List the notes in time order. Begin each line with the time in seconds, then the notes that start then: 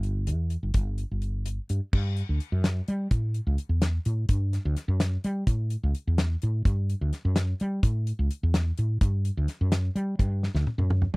Already playing: G1
0.03 closed hi-hat
0.27 E2, closed hi-hat
0.50 closed hi-hat
0.63 G1
0.74 G1, kick, closed hi-hat
0.98 closed hi-hat
1.11 G1
1.22 closed hi-hat
1.46 closed hi-hat
1.69 G2, closed hi-hat
1.93 G2, kick, crash
2.17 closed hi-hat
2.29 D2
2.40 closed hi-hat
2.52 F#2
2.64 snare, closed hi-hat
2.88 G3, closed hi-hat
3.11 A2, kick, closed hi-hat
3.34 closed hi-hat
3.47 C#2
3.58 closed hi-hat
3.69 E2
3.82 snare, closed hi-hat
4.05 A2, closed hi-hat
4.29 G2, kick, closed hi-hat
4.53 snare, closed hi-hat
4.65 D2
4.77 snare, closed hi-hat
4.88 F#2
5.00 snare, closed hi-hat
5.24 G3, closed hi-hat
5.47 A2, kick, closed hi-hat
5.70 closed hi-hat
5.83 C#2
5.95 closed hi-hat
6.07 E2
6.18 snare, closed hi-hat
6.42 A2, closed hi-hat
6.65 G2, kick, closed hi-hat
6.90 closed hi-hat
7.01 D2
7.13 snare, closed hi-hat
7.25 F#2
7.36 snare, closed hi-hat
7.60 G3, closed hi-hat
7.83 A2, kick, closed hi-hat
8.07 closed hi-hat
8.19 C#2
8.31 closed hi-hat
8.43 E2
8.54 snare, closed hi-hat
8.78 A2, closed hi-hat
9.01 G2, kick, closed hi-hat
9.25 closed hi-hat
9.37 D2
9.48 snare, closed hi-hat
9.61 F#2
9.72 snare, closed hi-hat
9.96 G3, closed hi-hat
10.19 G2, kick, closed hi-hat
10.43 snare
10.55 D2, snare
10.67 high tom
10.78 F#2, high tom
10.90 mid tom
11.02 mid tom